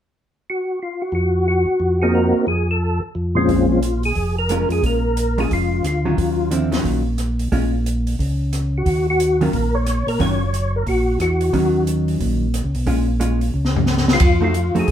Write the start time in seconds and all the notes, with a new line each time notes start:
0.50 F#4
0.82 F4
1.02 F#4
1.12 F2 F#4
1.48 F#4
1.80 F2
2.02 A#3 C4 D#4 F#4 G#4
2.15 A#4
2.47 F2 G#4
2.71 A4
3.15 F2
3.35 A#2 F3 G#3 C4 C#4 F4
3.49 A#1, kick, open hi-hat
3.72 F4
3.83 closed hi-hat
4.03 G#4, open hi-hat
4.15 F1, kick, open hi-hat
4.39 A#4
4.49 G#3 C#4 F4, cross-stick, closed hi-hat
4.69 F2 G#4, open hi-hat
4.83 A#1 A#4, kick, open hi-hat
5.17 closed hi-hat
5.38 G#3 C#4 F4 G#4, open hi-hat
5.50 F1 F4, kick, open hi-hat
5.83 D2, cross-stick, closed hi-hat
5.87 F4
6.05 D#3 F#3 C#4 F4
6.17 D#2, kick, open hi-hat
6.51 D3 F3 C4 E4, closed hi-hat
6.72 D#3 F#3 C#4 F4, snare, open hi-hat
6.84 A#1, kick, open hi-hat
7.18 cross-stick, closed hi-hat
7.39 open hi-hat
7.52 A#1 G#3 C#4 F4, kick, open hi-hat
7.86 closed hi-hat
8.07 open hi-hat
8.19 C#2, kick, open hi-hat
8.53 cross-stick, closed hi-hat
8.78 F#4
8.86 D#2, kick, open hi-hat
9.10 F#4
9.20 closed hi-hat
9.41 D#3 F#3 C#4 F4 A#4, open hi-hat
9.53 A#1, kick, open hi-hat
9.75 C#5
9.86 cross-stick, closed hi-hat
10.07 A#2 A#4, open hi-hat
10.20 F#1 D#3 F#3 C#4 F4 C#5, kick, open hi-hat
10.54 closed hi-hat
10.76 A#4
10.87 A#1 F#4, kick, open hi-hat
11.19 E2 F#4, cross-stick, closed hi-hat
11.41 open hi-hat
11.53 D#2 D#3 F#3 C#4, kick, open hi-hat
11.87 closed hi-hat
12.08 open hi-hat
12.20 A#1, kick, open hi-hat
12.54 cross-stick, closed hi-hat
12.64 C#2
12.75 B1, open hi-hat
12.87 A#1 G#3 C#4 F4, kick, open hi-hat
13.20 G#3 C#4 F4, closed hi-hat
13.41 open hi-hat
13.54 C#2
13.65 snare
13.76 floor tom
13.86 snare
13.97 snare
14.08 snare
14.13 F4
14.20 F2, kick, ride
14.41 F3 A3 D#4 F4 F#4
14.54 closed hi-hat
14.75 F2 F3 A3 D#4 F#4, open hi-hat
14.79 G#4
14.88 C2, kick, open hi-hat